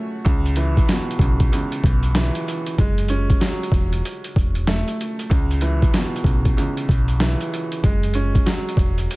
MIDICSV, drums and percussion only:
0, 0, Header, 1, 2, 480
1, 0, Start_track
1, 0, Key_signature, 4, "minor"
1, 0, Tempo, 631579
1, 195, Time_signature, 4, 2, 24, 8
1, 6962, End_track
2, 0, Start_track
2, 0, Title_t, "Drums"
2, 197, Note_on_c, 9, 36, 117
2, 198, Note_on_c, 9, 42, 91
2, 199, Note_on_c, 9, 82, 64
2, 273, Note_off_c, 9, 36, 0
2, 274, Note_off_c, 9, 42, 0
2, 275, Note_off_c, 9, 82, 0
2, 347, Note_on_c, 9, 42, 57
2, 423, Note_off_c, 9, 42, 0
2, 424, Note_on_c, 9, 42, 76
2, 435, Note_on_c, 9, 82, 55
2, 500, Note_off_c, 9, 42, 0
2, 511, Note_off_c, 9, 82, 0
2, 587, Note_on_c, 9, 36, 89
2, 591, Note_on_c, 9, 42, 58
2, 663, Note_off_c, 9, 36, 0
2, 667, Note_off_c, 9, 42, 0
2, 668, Note_on_c, 9, 82, 72
2, 674, Note_on_c, 9, 42, 97
2, 676, Note_on_c, 9, 38, 112
2, 744, Note_off_c, 9, 82, 0
2, 750, Note_off_c, 9, 42, 0
2, 752, Note_off_c, 9, 38, 0
2, 842, Note_on_c, 9, 42, 47
2, 905, Note_on_c, 9, 36, 93
2, 914, Note_on_c, 9, 82, 54
2, 918, Note_off_c, 9, 42, 0
2, 921, Note_on_c, 9, 42, 69
2, 981, Note_off_c, 9, 36, 0
2, 990, Note_off_c, 9, 82, 0
2, 997, Note_off_c, 9, 42, 0
2, 1063, Note_on_c, 9, 42, 60
2, 1064, Note_on_c, 9, 36, 95
2, 1139, Note_off_c, 9, 42, 0
2, 1140, Note_off_c, 9, 36, 0
2, 1152, Note_on_c, 9, 82, 64
2, 1162, Note_on_c, 9, 42, 99
2, 1228, Note_off_c, 9, 82, 0
2, 1238, Note_off_c, 9, 42, 0
2, 1306, Note_on_c, 9, 42, 55
2, 1382, Note_off_c, 9, 42, 0
2, 1395, Note_on_c, 9, 36, 94
2, 1397, Note_on_c, 9, 82, 48
2, 1410, Note_on_c, 9, 42, 72
2, 1471, Note_off_c, 9, 36, 0
2, 1473, Note_off_c, 9, 82, 0
2, 1486, Note_off_c, 9, 42, 0
2, 1541, Note_on_c, 9, 42, 51
2, 1617, Note_off_c, 9, 42, 0
2, 1628, Note_on_c, 9, 82, 66
2, 1633, Note_on_c, 9, 38, 109
2, 1636, Note_on_c, 9, 42, 109
2, 1704, Note_off_c, 9, 82, 0
2, 1709, Note_off_c, 9, 38, 0
2, 1712, Note_off_c, 9, 42, 0
2, 1787, Note_on_c, 9, 42, 55
2, 1863, Note_off_c, 9, 42, 0
2, 1883, Note_on_c, 9, 82, 46
2, 1886, Note_on_c, 9, 42, 70
2, 1959, Note_off_c, 9, 82, 0
2, 1962, Note_off_c, 9, 42, 0
2, 2025, Note_on_c, 9, 42, 54
2, 2101, Note_off_c, 9, 42, 0
2, 2116, Note_on_c, 9, 36, 120
2, 2116, Note_on_c, 9, 42, 89
2, 2120, Note_on_c, 9, 82, 64
2, 2192, Note_off_c, 9, 36, 0
2, 2192, Note_off_c, 9, 42, 0
2, 2196, Note_off_c, 9, 82, 0
2, 2265, Note_on_c, 9, 42, 57
2, 2341, Note_off_c, 9, 42, 0
2, 2343, Note_on_c, 9, 42, 78
2, 2356, Note_on_c, 9, 82, 55
2, 2419, Note_off_c, 9, 42, 0
2, 2432, Note_off_c, 9, 82, 0
2, 2506, Note_on_c, 9, 36, 92
2, 2510, Note_on_c, 9, 42, 58
2, 2582, Note_off_c, 9, 36, 0
2, 2586, Note_off_c, 9, 42, 0
2, 2588, Note_on_c, 9, 82, 72
2, 2592, Note_on_c, 9, 42, 97
2, 2594, Note_on_c, 9, 38, 112
2, 2664, Note_off_c, 9, 82, 0
2, 2668, Note_off_c, 9, 42, 0
2, 2670, Note_off_c, 9, 38, 0
2, 2760, Note_on_c, 9, 42, 46
2, 2824, Note_on_c, 9, 36, 99
2, 2834, Note_on_c, 9, 82, 52
2, 2836, Note_off_c, 9, 42, 0
2, 2840, Note_on_c, 9, 42, 74
2, 2900, Note_off_c, 9, 36, 0
2, 2910, Note_off_c, 9, 82, 0
2, 2916, Note_off_c, 9, 42, 0
2, 2983, Note_on_c, 9, 42, 61
2, 3059, Note_off_c, 9, 42, 0
2, 3071, Note_on_c, 9, 82, 64
2, 3081, Note_on_c, 9, 42, 103
2, 3147, Note_off_c, 9, 82, 0
2, 3157, Note_off_c, 9, 42, 0
2, 3225, Note_on_c, 9, 42, 57
2, 3301, Note_off_c, 9, 42, 0
2, 3315, Note_on_c, 9, 36, 97
2, 3317, Note_on_c, 9, 82, 48
2, 3329, Note_on_c, 9, 42, 70
2, 3391, Note_off_c, 9, 36, 0
2, 3393, Note_off_c, 9, 82, 0
2, 3405, Note_off_c, 9, 42, 0
2, 3459, Note_on_c, 9, 42, 50
2, 3535, Note_off_c, 9, 42, 0
2, 3548, Note_on_c, 9, 82, 68
2, 3552, Note_on_c, 9, 38, 108
2, 3555, Note_on_c, 9, 42, 108
2, 3624, Note_off_c, 9, 82, 0
2, 3628, Note_off_c, 9, 38, 0
2, 3631, Note_off_c, 9, 42, 0
2, 3706, Note_on_c, 9, 42, 56
2, 3782, Note_off_c, 9, 42, 0
2, 3802, Note_on_c, 9, 82, 48
2, 3806, Note_on_c, 9, 42, 70
2, 3878, Note_off_c, 9, 82, 0
2, 3882, Note_off_c, 9, 42, 0
2, 3945, Note_on_c, 9, 42, 57
2, 4021, Note_off_c, 9, 42, 0
2, 4036, Note_on_c, 9, 36, 122
2, 4036, Note_on_c, 9, 42, 91
2, 4039, Note_on_c, 9, 82, 62
2, 4112, Note_off_c, 9, 36, 0
2, 4112, Note_off_c, 9, 42, 0
2, 4115, Note_off_c, 9, 82, 0
2, 4185, Note_on_c, 9, 42, 57
2, 4261, Note_off_c, 9, 42, 0
2, 4263, Note_on_c, 9, 42, 75
2, 4274, Note_on_c, 9, 82, 56
2, 4339, Note_off_c, 9, 42, 0
2, 4350, Note_off_c, 9, 82, 0
2, 4426, Note_on_c, 9, 36, 91
2, 4430, Note_on_c, 9, 42, 59
2, 4502, Note_off_c, 9, 36, 0
2, 4506, Note_off_c, 9, 42, 0
2, 4508, Note_on_c, 9, 82, 73
2, 4512, Note_on_c, 9, 42, 100
2, 4514, Note_on_c, 9, 38, 113
2, 4584, Note_off_c, 9, 82, 0
2, 4588, Note_off_c, 9, 42, 0
2, 4590, Note_off_c, 9, 38, 0
2, 4680, Note_on_c, 9, 42, 49
2, 4744, Note_on_c, 9, 36, 100
2, 4754, Note_on_c, 9, 82, 54
2, 4756, Note_off_c, 9, 42, 0
2, 4760, Note_on_c, 9, 42, 72
2, 4820, Note_off_c, 9, 36, 0
2, 4830, Note_off_c, 9, 82, 0
2, 4836, Note_off_c, 9, 42, 0
2, 4903, Note_on_c, 9, 42, 59
2, 4904, Note_on_c, 9, 36, 95
2, 4979, Note_off_c, 9, 42, 0
2, 4980, Note_off_c, 9, 36, 0
2, 4992, Note_on_c, 9, 82, 64
2, 5002, Note_on_c, 9, 42, 100
2, 5068, Note_off_c, 9, 82, 0
2, 5078, Note_off_c, 9, 42, 0
2, 5146, Note_on_c, 9, 42, 54
2, 5222, Note_off_c, 9, 42, 0
2, 5235, Note_on_c, 9, 36, 93
2, 5238, Note_on_c, 9, 82, 48
2, 5250, Note_on_c, 9, 42, 73
2, 5311, Note_off_c, 9, 36, 0
2, 5314, Note_off_c, 9, 82, 0
2, 5326, Note_off_c, 9, 42, 0
2, 5380, Note_on_c, 9, 42, 51
2, 5456, Note_off_c, 9, 42, 0
2, 5469, Note_on_c, 9, 82, 68
2, 5473, Note_on_c, 9, 38, 112
2, 5476, Note_on_c, 9, 42, 111
2, 5545, Note_off_c, 9, 82, 0
2, 5549, Note_off_c, 9, 38, 0
2, 5552, Note_off_c, 9, 42, 0
2, 5627, Note_on_c, 9, 42, 55
2, 5703, Note_off_c, 9, 42, 0
2, 5722, Note_on_c, 9, 82, 46
2, 5727, Note_on_c, 9, 42, 70
2, 5798, Note_off_c, 9, 82, 0
2, 5803, Note_off_c, 9, 42, 0
2, 5866, Note_on_c, 9, 42, 57
2, 5942, Note_off_c, 9, 42, 0
2, 5956, Note_on_c, 9, 36, 120
2, 5957, Note_on_c, 9, 42, 91
2, 5960, Note_on_c, 9, 82, 64
2, 6032, Note_off_c, 9, 36, 0
2, 6033, Note_off_c, 9, 42, 0
2, 6036, Note_off_c, 9, 82, 0
2, 6105, Note_on_c, 9, 42, 57
2, 6181, Note_off_c, 9, 42, 0
2, 6183, Note_on_c, 9, 42, 76
2, 6196, Note_on_c, 9, 82, 55
2, 6259, Note_off_c, 9, 42, 0
2, 6272, Note_off_c, 9, 82, 0
2, 6344, Note_on_c, 9, 82, 50
2, 6346, Note_on_c, 9, 36, 92
2, 6350, Note_on_c, 9, 42, 59
2, 6420, Note_off_c, 9, 82, 0
2, 6422, Note_off_c, 9, 36, 0
2, 6426, Note_off_c, 9, 42, 0
2, 6428, Note_on_c, 9, 82, 70
2, 6433, Note_on_c, 9, 42, 99
2, 6435, Note_on_c, 9, 38, 114
2, 6504, Note_off_c, 9, 82, 0
2, 6509, Note_off_c, 9, 42, 0
2, 6511, Note_off_c, 9, 38, 0
2, 6600, Note_on_c, 9, 42, 49
2, 6665, Note_on_c, 9, 36, 94
2, 6674, Note_on_c, 9, 82, 52
2, 6676, Note_off_c, 9, 42, 0
2, 6680, Note_on_c, 9, 42, 72
2, 6741, Note_off_c, 9, 36, 0
2, 6750, Note_off_c, 9, 82, 0
2, 6756, Note_off_c, 9, 42, 0
2, 6823, Note_on_c, 9, 42, 59
2, 6830, Note_on_c, 9, 82, 47
2, 6899, Note_off_c, 9, 42, 0
2, 6906, Note_off_c, 9, 82, 0
2, 6912, Note_on_c, 9, 82, 64
2, 6921, Note_on_c, 9, 42, 100
2, 6962, Note_off_c, 9, 42, 0
2, 6962, Note_off_c, 9, 82, 0
2, 6962, End_track
0, 0, End_of_file